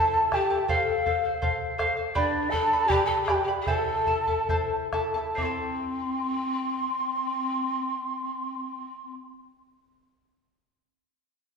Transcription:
0.00 0.31 E4 medium
0.00 0.31 A4 medium
0.00 0.35 A4 medium
0.00 0.31 C5 medium
0.00 0.31 E5 medium
0.00 0.32 A5 medium
0.00 0.35 A5 loud
0.32 0.50 E4 medium
0.32 0.69 G4 medium
0.32 0.49 A4 medium
0.32 0.50 E5 medium
0.32 0.69 G5 medium
0.32 0.49 A5 medium
0.32 bombo rim soft
0.32 bombo low soft
0.50 0.69 E4 soft
0.50 0.67 A4 soft
0.50 0.68 A5 medium
0.68 1.05 A4 medium
0.68 1.76 A4 medium
0.68 1.05 C5 medium
0.68 1.06 F5 medium
0.68 0.76 G5 medium
0.68 bombo low medium
0.75 1.76 F5 medium
1.06 1.24 A4 medium
1.06 1.24 C5 medium
1.06 1.23 F5 medium
1.06 bombo low medium
1.25 1.41 C5 soft
1.25 1.42 F5 soft
1.42 1.77 A4 medium
1.42 1.78 C5 medium
1.42 1.78 F5 medium
1.42 bombo low medium
1.78 1.97 A4 medium
1.78 1.96 C5 medium
1.78 1.96 F5 medium
1.78 bombo rim soft
1.78 bombo low soft
1.97 2.14 C5 soft
1.97 2.15 F5 medium
2.15 2.52 D4 medium
2.15 2.52 G4 medium
2.15 2.52 B4 medium
2.15 2.51 D5 medium
2.15 2.53 D5 medium
2.15 2.52 G5 medium
2.15 2.53 B5 medium
2.15 bombo low medium
2.50 2.89 A4 medium
2.50 2.72 G5 medium
2.50 2.90 A5 loud
2.50 bombo low medium
2.54 2.72 B4 medium
2.54 2.72 D5 medium
2.54 2.72 B5 medium
2.73 2.90 B4 soft
2.73 2.90 D5 soft
2.73 2.90 B5 medium
2.87 3.07 G4 medium
2.87 3.29 G4 medium
2.87 3.08 G5 medium
2.87 3.27 G5 medium
2.87 3.28 B5 medium
2.87 bombo low medium
2.91 3.28 B4 medium
2.91 3.28 D5 medium
3.05 3.23 A4 medium
3.05 3.26 A5 medium
3.23 3.43 G4 medium
3.23 3.45 G5 medium
3.28 3.47 B4 medium
3.28 3.47 D5 medium
3.28 3.48 G5 medium
3.28 3.47 B5 medium
3.28 bombo rim soft
3.28 bombo low soft
3.43 3.49 G4 medium
3.43 3.52 G5 medium
3.48 3.67 B4 soft
3.48 3.67 D5 soft
3.48 3.67 B5 medium
3.62 4.85 A4 medium
3.62 4.87 A5 medium
3.67 4.06 E4 medium
3.67 4.06 A4 medium
3.67 4.07 C5 medium
3.67 4.05 E5 medium
3.67 4.07 A5 medium
3.67 bombo low medium
4.06 4.27 E4 medium
4.06 4.27 A4 medium
4.06 4.27 E5 medium
4.06 4.26 A5 medium
4.06 bombo low medium
4.27 4.49 E4 soft
4.27 4.49 A4 soft
4.27 4.48 A5 soft
4.27 bombo low soft
4.49 4.92 E4 medium
4.49 4.92 A4 medium
4.49 4.92 C5 medium
4.49 4.91 E5 medium
4.49 4.92 A5 medium
4.49 bombo low medium
4.93 5.15 E4 medium
4.93 5.14 A4 medium
4.93 5.14 E5 medium
4.93 5.13 A5 medium
4.93 bombo rim soft
4.93 bombo low soft
5.14 5.38 E4 medium
5.14 5.37 A4 medium
5.14 5.37 A5 medium
5.35 9.14 C4 medium
5.35 9.16 C5 medium
5.35 5.44 E5 medium
5.35 5.44 D6 medium
5.35 bombo low medium
5.40 9.21 E4 medium
5.40 9.24 A4 medium
5.40 9.15 C6 medium
5.45 9.26 A5 medium

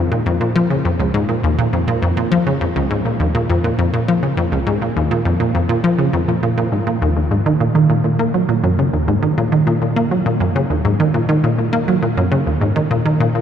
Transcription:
0.12 0.22 A#2 loud
0.26 0.33 F2 loud
0.41 0.48 A#2 loud
0.56 0.60 F3 loud
0.70 0.77 C#3 medium
0.85 0.89 F2 loud
0.99 1.06 C#2 loud
1.14 1.18 G#2 loud
1.29 1.36 A#2 medium
1.44 1.51 D#2 loud
1.58 1.65 A#2 loud
1.73 1.80 F2 medium
1.88 1.98 A#2 loud
2.02 2.09 F2 loud
2.17 2.24 A#2 loud
2.32 2.36 F3 loud
2.47 2.54 C#3 medium
2.61 2.65 F2 loud
2.76 2.83 C#2 loud
2.91 2.95 G#2 loud
3.05 3.12 A#2 medium
3.20 3.27 D#2 loud
3.35 3.42 A#2 loud
3.50 3.56 F2 loud
3.64 3.75 A#2 loud
3.79 3.86 F2 loud
3.94 4.01 A#2 loud
4.08 4.12 F3 loud
4.23 4.30 C#3 medium
4.37 4.42 F2 loud
4.52 4.59 C#2 loud
4.67 4.71 G#2 loud
4.82 4.89 A#2 medium
4.96 5.03 D#2 loud
5.11 5.18 A#2 loud
5.25 5.33 F2 loud
5.40 5.51 A#2 medium
5.55 5.62 F2 loud
5.69 5.77 A#2 loud
5.84 5.88 F3 loud
5.98 6.06 C#3 medium
6.13 6.18 F2 loud
6.28 6.36 A#2 medium
6.43 6.54 A#2 loud
6.58 6.65 A#2 loud
6.72 6.80 G#2 medium
6.87 6.94 A#2 medium
7.02 7.13 D#2 loud
7.17 7.24 D#2 medium
7.31 7.38 G#2 loud
7.46 7.53 D#3 loud
7.60 7.68 A#2 loud
7.75 7.86 D#3 loud
7.90 7.97 A#2 loud
8.04 8.15 A#2 medium
8.19 8.24 A#3 loud
8.34 8.41 F#3 medium
8.49 8.53 A#2 loud
8.64 8.71 F#2 loud
8.79 8.83 C#3 medium
8.93 9.00 D#2 medium
9.08 9.15 G#2 loud
9.23 9.30 D#3 loud
9.38 9.45 A#2 loud
9.52 9.63 D#3 loud
9.67 9.74 A#2 loud
9.82 9.92 A#2 medium
9.96 10.01 A#3 loud
10.11 10.18 F#3 medium
10.26 10.30 A#2 loud
10.40 10.48 F#2 loud
10.56 10.60 C#3 loud
10.70 10.77 D#2 medium
10.85 10.92 G#2 loud
11.00 11.07 D#3 loud
11.14 11.21 A#2 loud
11.29 11.39 D#3 loud
11.44 11.51 A#2 loud
11.58 11.69 A#2 medium
11.73 11.77 A#3 loud
11.88 11.95 F#3 medium
12.02 12.07 A#2 loud
12.17 12.24 F#2 loud
12.32 12.36 C#3 loud
12.47 12.54 D#2 medium
12.61 12.68 G#2 loud
12.76 12.83 D#3 loud
12.91 12.98 A#2 loud
13.06 13.16 D#3 loud
13.20 13.27 A#2 loud
13.35 13.41 A#2 medium

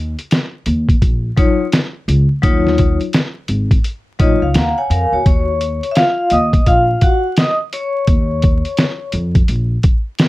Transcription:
0.00 0.14 D#2 loud
0.19 closed hi-hat soft
0.31 snare loud
0.31 closed hi-hat medium
0.66 0.93 D#2 medium
0.66 closed hi-hat medium
0.89 kick medium
0.89 closed hi-hat soft
1.02 1.29 A#1 medium
1.02 kick medium
1.02 closed hi-hat medium
1.36 1.65 F#3 medium
1.36 1.65 D#4 medium
1.36 1.65 F4 medium
1.36 1.65 C#5 medium
1.36 kick medium
1.36 closed hi-hat medium
1.72 snare loud
1.72 closed hi-hat medium
2.08 2.25 C#2 medium
2.08 closed hi-hat medium
2.42 2.97 D#2 loud
2.42 2.96 F#3 medium
2.42 2.96 D#4 medium
2.42 2.97 F4 medium
2.42 2.97 C#5 medium
2.42 kick loud
2.42 closed hi-hat medium
2.67 snare soft
2.78 kick medium
2.78 closed hi-hat medium
3.01 closed hi-hat soft
3.13 snare loud
3.13 closed hi-hat medium
3.48 3.76 G#1 medium
3.48 closed hi-hat medium
3.71 kick medium
3.71 closed hi-hat medium
3.84 closed hi-hat medium
4.19 4.37 A#1 medium
4.19 4.47 F#3 medium
4.19 4.47 D#4 medium
4.19 4.48 F4 medium
4.19 4.48 C#5 medium
4.19 4.41 D#5 medium
4.19 kick medium
4.19 closed hi-hat medium
4.42 4.52 C#2 medium
4.42 4.54 F5 medium
4.54 4.72 D#2 medium
4.54 4.77 F5 medium
4.54 4.76 F#5 medium
4.54 4.77 A#5 medium
4.54 snare loud
4.54 closed hi-hat medium
4.78 4.90 C#5 medium
4.78 4.90 F#5 medium
4.78 5.22 G#5 medium
4.90 5.07 F2 medium
4.90 5.12 A#4 medium
4.90 5.12 F5 medium
4.90 closed hi-hat medium
5.12 5.22 E2 medium
5.12 5.47 F#4 medium
5.12 5.25 C#5 medium
5.26 5.79 D#2 loud
5.26 5.93 C#5 medium
5.26 5.88 C#6 medium
5.26 kick loud
5.26 closed hi-hat medium
5.61 closed hi-hat medium
5.83 closed hi-hat soft
5.91 5.96 E5 medium
5.95 6.29 F4 medium
5.95 6.32 F5 loud
5.95 snare loud
5.95 closed hi-hat medium
6.30 6.58 D#2 medium
6.30 6.68 D#5 medium
6.30 6.65 D#6 medium
6.30 closed hi-hat medium
6.53 kick medium
6.53 closed hi-hat medium
6.66 6.93 A#1 medium
6.66 7.00 F4 medium
6.66 7.03 F5 loud
6.66 kick medium
6.66 closed hi-hat medium
7.01 7.35 F#4 medium
7.01 7.39 F#5 medium
7.01 kick medium
7.01 closed hi-hat medium
7.37 7.53 D#5 medium
7.37 7.54 D#6 medium
7.37 snare loud
7.37 closed hi-hat loud
7.73 9.10 C#5 medium
7.73 9.10 C#6 medium
7.73 closed hi-hat medium
8.07 8.61 D#2 loud
8.07 kick loud
8.07 closed hi-hat medium
8.42 kick medium
8.42 closed hi-hat medium
8.65 closed hi-hat soft
8.77 snare loud
8.77 closed hi-hat medium
9.12 9.40 F2 loud
9.12 closed hi-hat medium
9.35 kick medium
9.35 closed hi-hat medium
9.48 9.76 A#1 medium
9.48 closed hi-hat medium
9.83 kick medium
9.83 closed hi-hat medium
10.19 snare loud
10.19 closed hi-hat loud

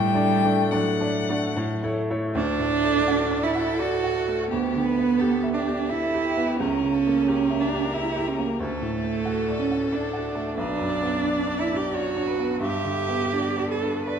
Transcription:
0.00 0.13 A2 medium
0.00 0.71 G3 loud
0.00 0.73 G5 loud
0.14 0.41 A3 medium
0.14 0.41 D4 medium
0.14 0.41 D5 medium
0.44 0.70 A3 medium
0.44 0.70 D4 medium
0.44 0.71 D5 medium
0.72 1.94 F#3 medium
0.72 0.98 A3 medium
0.72 0.98 D4 medium
0.72 0.98 D5 medium
0.72 1.96 F#5 medium
1.01 1.26 A3 medium
1.01 1.26 D4 soft
1.01 1.26 D5 medium
1.29 1.54 A3 medium
1.29 1.54 D4 medium
1.29 1.54 D5 medium
1.57 1.83 A2 medium
1.83 2.07 A3 medium
1.83 2.08 E4 medium
1.83 2.08 C#5 medium
2.10 2.33 A3 medium
2.10 2.33 E4 medium
2.10 2.33 C#5 medium
2.34 4.47 D2 medium
2.34 3.44 D4 loud
2.59 2.97 A2 medium
2.84 3.22 A3 soft
3.06 3.46 F#4 medium
3.06 4.47 A4 medium
3.31 3.70 D5 medium
3.43 3.81 E4 medium
3.55 3.94 F#4 medium
3.79 4.50 F#4 loud
3.79 4.18 D5 medium
4.04 4.42 F#4 medium
4.28 4.51 A3 medium
4.50 6.55 D2 medium
4.50 5.56 B3 loud
4.50 4.87 G4 medium
4.75 5.12 D3 soft
4.85 5.20 B4 medium
4.99 5.35 B3 soft
5.19 5.57 G4 medium
5.19 5.53 A4 medium
5.43 5.80 E5 soft
5.53 5.90 D4 medium
5.53 5.91 G4 medium
5.67 6.03 G4 soft
5.89 6.59 E4 medium
5.89 6.25 A4 medium
5.89 6.27 E5 medium
6.14 6.50 G4 soft
6.24 6.61 G4 medium
6.37 6.59 B3 medium
6.59 8.56 C#2 medium
6.59 7.63 C#4 loud
6.59 6.95 A#4 medium
6.83 7.18 C#3 soft
6.94 7.28 A4 medium
7.07 7.41 A#3 soft
7.27 7.62 G4 medium
7.27 8.60 A#4 medium
7.50 7.85 E5 soft
7.61 7.95 D4 medium
7.73 8.07 G4 soft
7.94 8.29 E4 medium
7.94 8.29 E5 medium
8.17 8.51 G4 soft
8.28 8.47 C#4 medium
8.38 8.60 A#3 medium
8.46 8.61 A#3 medium
8.59 10.53 D2 medium
8.59 9.61 A3 loud
8.59 10.56 A4 medium
8.82 9.16 A2 soft
9.04 9.39 A3 soft
9.25 9.60 F#4 medium
9.48 9.83 D5 soft
9.60 9.95 C#4 medium
9.71 10.05 F#4 soft
9.93 10.57 D4 medium
9.93 10.26 D5 medium
10.13 10.48 F#4 soft
10.35 10.57 A3 medium
10.56 12.58 B1 medium
10.56 11.62 D4 loud
10.56 10.91 B4 medium
10.79 11.16 F#2 soft
10.90 11.95 D5 medium
11.03 11.39 B3 soft
11.24 11.61 D4 medium
11.48 11.85 D5 soft
11.60 11.79 E4 medium
11.72 12.08 D4 soft
11.77 11.96 G4 medium
11.93 12.61 F#4 medium
11.93 12.28 C#5 medium
11.93 12.30 D5 medium
12.16 12.52 D4 medium
12.27 12.60 B4 medium
12.38 12.61 B3 soft
12.60 14.19 G2 medium
12.60 13.68 G4 loud
12.60 13.34 E5 medium
12.84 13.23 D3 soft
13.09 13.48 B3 soft
13.33 13.73 D4 soft
13.33 13.71 D5 medium
13.58 13.97 D5 soft
13.69 14.05 A4 medium
13.69 14.06 B4 medium
13.83 14.19 D4 soft
14.05 14.19 A4 medium
14.05 14.19 B4 medium
14.05 14.19 D5 soft

